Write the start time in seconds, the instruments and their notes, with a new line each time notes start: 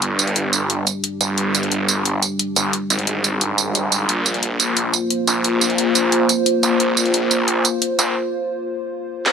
Already playing: analog synth pad G3 D4 G4
0.02 detuned saw bass G1, closed hi-hat
0.19 closed hi-hat, tambourine
0.27 closed hi-hat
0.36 closed hi-hat
0.53 closed hi-hat, tambourine
0.70 closed hi-hat
0.87 closed hi-hat, tambourine
1.04 closed hi-hat
1.21 detuned saw bass G1, closed hi-hat, tambourine
1.38 detuned saw bass G1, closed hi-hat
1.55 closed hi-hat, tambourine
1.63 closed hi-hat
1.72 detuned saw bass G1, closed hi-hat
1.89 closed hi-hat, tambourine
2.05 closed hi-hat
2.22 closed hi-hat, tambourine
2.39 closed hi-hat
2.56 detuned saw bass G1, closed hi-hat, tambourine
2.73 closed hi-hat
2.90 detuned saw bass G#1, closed hi-hat, tambourine
2.99 closed hi-hat
3.07 closed hi-hat
3.24 closed hi-hat, tambourine
3.41 closed hi-hat
3.58 closed hi-hat, tambourine
3.75 closed hi-hat, tambourine
3.92 closed hi-hat, tambourine
4.09 detuned saw bass A#1, analog synth pad A#3 F4 C5, closed hi-hat
4.26 closed hi-hat, tambourine
4.34 closed hi-hat
4.43 detuned saw bass A#1, closed hi-hat
4.60 closed hi-hat, tambourine
4.77 closed hi-hat
4.94 closed hi-hat, tambourine
5.10 closed hi-hat
5.27 detuned saw bass A#1, closed hi-hat, tambourine
5.44 detuned saw bass A#1, closed hi-hat
5.61 closed hi-hat, tambourine
5.70 closed hi-hat
5.78 closed hi-hat
5.95 closed hi-hat, tambourine
6.12 closed hi-hat
6.29 closed hi-hat, tambourine
6.46 closed hi-hat
6.63 detuned saw bass A#1, closed hi-hat, tambourine
6.80 detuned saw bass A#1, closed hi-hat
6.97 closed hi-hat, tambourine
7.05 closed hi-hat
7.14 detuned saw bass A#1, closed hi-hat
7.31 closed hi-hat, tambourine
7.48 closed hi-hat
7.65 closed hi-hat, tambourine
7.82 closed hi-hat
7.99 detuned saw bass A#1, closed hi-hat, tambourine
9.26 snare